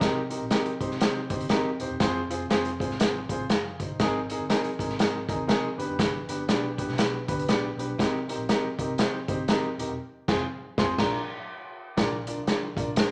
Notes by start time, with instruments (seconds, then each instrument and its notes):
0.00 fingered electric bass C2, grand piano C4 D#4 G4 A#4, kick, snare, closed hi-hat
0.30 grand piano C4 D#4 G4 A#4, closed hi-hat
0.42 fingered electric bass A#1
0.50 grand piano C4 D#4 G4 A#4, snare, closed hi-hat
0.66 muted fingered electric bass stroke, closed hi-hat
0.80 fingered electric bass C2, grand piano C4 D#4 G4 C5, kick, closed hi-hat
0.91 snare
1.01 fingered electric bass C3, grand piano C4 D#4 G4 C5, snare, closed hi-hat
1.30 fingered electric bass G1, grand piano C4 D#4 G4 C5, kick, closed hi-hat
1.41 closed hi-hat
1.49 fingered electric bass G1, grand piano C4 D#4 G4 A#4, snare, closed hi-hat
1.79 fingered electric bass D#1, grand piano C4 D#4 G4 C5, closed hi-hat
1.89 fingered electric bass E1
2.00 fingered electric bass F1, grand piano C4 F4 G#4 C5, kick, snare, closed hi-hat
2.29 fingered electric bass F1, grand piano C4 F4 G#4 C5, closed hi-hat
2.49 fingered electric bass F1, grand piano C4 F4 G#4 C5, snare, closed hi-hat
2.65 closed hi-hat
2.80 grand piano C4 F4 G#4 C5, kick, closed hi-hat
2.89 fingered electric bass G#1, snare
3.00 grand piano C4 F4 G#4 C5, snare, closed hi-hat
3.29 fingered electric bass G#1, grand piano C4 F4 G#4 C5, kick, closed hi-hat
3.48 fingered electric bass F#1, grand piano G#4 F5, snare, closed hi-hat
3.80 fingered electric bass G1, grand piano D#4 C5, kick, closed hi-hat
3.99 fingered electric bass G#1, grand piano C4 D#4 G#4 A#4, kick, snare, closed hi-hat
4.30 grand piano C4 D#4 G#4 A#4, closed hi-hat
4.39 fingered electric bass G1
4.49 grand piano C4 D#4 G#4 A#4, snare, closed hi-hat
4.64 muted fingered electric bass stroke, closed hi-hat
4.79 fingered electric bass G#1, grand piano C4 D#4 G#4 A#4, kick, closed hi-hat
4.89 snare
4.99 fingered electric bass G#2, grand piano C4 D#4 G#4 A#4, snare, closed hi-hat
5.28 fingered electric bass D#2, grand piano C4 D#4 G#4 A#4, kick, closed hi-hat
5.47 fingered electric bass C2, grand piano C4 D#4 G#4 A#4, snare, closed hi-hat
5.77 fingered electric bass G1, grand piano B3 D4 G4 B4, closed hi-hat
5.89 fingered electric bass F#1
5.99 fingered electric bass G1, kick, snare, closed hi-hat
6.28 fingered electric bass G1, grand piano B3 D4 G4 B4, closed hi-hat
6.48 fingered electric bass B1, grand piano B3 D4 G4 D5, snare, closed hi-hat
6.78 grand piano B3 D4 G4 B4, kick, closed hi-hat
6.87 fingered electric bass B1, snare
6.98 grand piano B3 D4 G4 B4, snare, closed hi-hat
7.28 fingered electric bass D2, grand piano B3 D4 G4 B4, kick, closed hi-hat
7.39 closed hi-hat
7.47 fingered electric bass A#1, grand piano B3 D4 G4 D5, snare, closed hi-hat
7.77 fingered electric bass B1, grand piano B3 D4 G4 B4, closed hi-hat
7.98 grand piano C4 D#4 G4 A#4, kick, snare, closed hi-hat
8.29 grand piano C4 D#4 G4 A#4, closed hi-hat
8.37 fingered electric bass A#1
8.49 grand piano C4 D#4 G4 A#4, snare, closed hi-hat
8.64 muted fingered electric bass stroke
8.78 fingered electric bass C2, grand piano C4 D#4 G4 A#4, kick, closed hi-hat
8.98 fingered electric bass C3, grand piano C4 D#4 G4 C5, snare, closed hi-hat
9.28 fingered electric bass G1, grand piano C4 D#4 G4 C5, kick, closed hi-hat
9.48 fingered electric bass G1, grand piano C4 D#4 G4 A#4, snare, closed hi-hat
9.78 fingered electric bass D#1, grand piano C4 D#4 G4 A#4, closed hi-hat
9.88 fingered electric bass E1
10.28 fingered electric bass F1, grand piano C4 F4 G#4 C5, kick, snare, crash
10.78 fingered electric bass F1, grand piano C4 F4 G#4 C5 C6, kick, snare
10.98 fingered electric bass A#1, grand piano D4 F4 A#4 D5 A#5, kick, snare, crash
11.97 fingered electric bass A#1, grand piano D4 F4 A#4 D5, kick, snare, closed hi-hat
12.27 grand piano D4 F4 A#4 D5, closed hi-hat
12.36 fingered electric bass C2
12.47 grand piano D4 F4 A#4 D5, snare, closed hi-hat
12.76 fingered electric bass A#1, grand piano D4 F4 A#4 D5, kick, closed hi-hat
12.95 fingered electric bass A#2, grand piano D4 F4 A#4 C5, snare, closed hi-hat